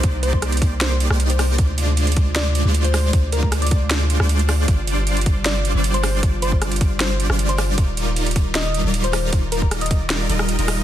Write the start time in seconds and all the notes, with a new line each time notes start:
Already playing: C3 A#3 D#4 D5
0.03 C2 A#3 D#4 G4 C5 D5, kick, closed hi-hat
0.23 C5, closed hi-hat
0.33 kick
0.42 cross-stick, closed hi-hat
0.52 closed hi-hat
0.57 closed hi-hat
0.62 kick, closed hi-hat
0.81 C5, snare, closed hi-hat
0.91 C5
1.00 closed hi-hat
1.10 C2 A#3 D#4 G4 C5 D5, cross-stick
1.20 closed hi-hat
1.30 C5, closed hi-hat
1.39 C5, cross-stick, open hi-hat
1.58 D2 G#3 D4 F4 C5 D5, kick, closed hi-hat
1.78 closed hi-hat
1.97 closed hi-hat
2.07 closed hi-hat
2.12 closed hi-hat
2.16 kick, closed hi-hat
2.36 D5, snare, closed hi-hat
2.55 closed hi-hat
2.65 D2 G#3 D4 F4 C5 D5
2.74 closed hi-hat
2.84 C5, closed hi-hat
2.94 cross-stick, open hi-hat
3.13 D2 G#3 D4 F4 C5 D5, kick, closed hi-hat
3.32 A#4, closed hi-hat
3.43 A#4, kick
3.52 cross-stick, closed hi-hat
3.62 D5, closed hi-hat
3.67 closed hi-hat
3.71 kick, closed hi-hat
3.91 snare, closed hi-hat
4.10 closed hi-hat
4.20 D2 G#3 D4 F4 C5 D5, cross-stick
4.29 closed hi-hat
4.39 closed hi-hat
4.49 cross-stick, open hi-hat
4.68 G1 C3 G3 D4 F4 C5 D5, kick, closed hi-hat
4.87 closed hi-hat
5.07 closed hi-hat
5.17 closed hi-hat
5.21 closed hi-hat
5.26 kick, closed hi-hat
5.46 D5, snare, closed hi-hat
5.65 closed hi-hat
5.75 G1 G3 D4 F4 C5 D5
5.84 closed hi-hat
5.94 C5, closed hi-hat
6.04 cross-stick, open hi-hat
6.23 G1 G3 D4 F4 C5 D5, kick, closed hi-hat
6.42 C5, closed hi-hat
6.52 kick
6.62 cross-stick, closed hi-hat
6.72 closed hi-hat
6.76 closed hi-hat
6.81 kick, closed hi-hat
7.00 C5, snare, closed hi-hat
7.10 C5
7.20 closed hi-hat
7.30 G1 G3 D4 F4 C5 D5, cross-stick
7.39 closed hi-hat
7.49 C5, closed hi-hat
7.58 C5, cross-stick, open hi-hat
7.78 D#3 G3 D#4 F4 A#4 D5, kick, closed hi-hat
7.97 closed hi-hat
8.16 closed hi-hat
8.26 closed hi-hat
8.31 closed hi-hat
8.36 kick, closed hi-hat
8.55 D#5, snare, closed hi-hat
8.74 closed hi-hat
8.84 D#1 G3 D#4 F4 A#4 D5
8.94 closed hi-hat
9.04 C5, closed hi-hat
9.13 cross-stick, open hi-hat
9.33 D#1 G3 D#4 F4 A#4 D5, kick, closed hi-hat
9.52 A#4, closed hi-hat
9.62 A#4, kick
9.71 cross-stick, closed hi-hat
9.81 D#5, closed hi-hat
9.86 closed hi-hat
9.91 D#5, kick, closed hi-hat
10.10 snare, closed hi-hat
10.29 D#1 G3 D#4 F4 A#4 D#5, closed hi-hat
10.39 cross-stick
10.49 closed hi-hat
10.59 D#1 G3 D#4 F4 A#4 D#5, closed hi-hat
10.68 cross-stick, open hi-hat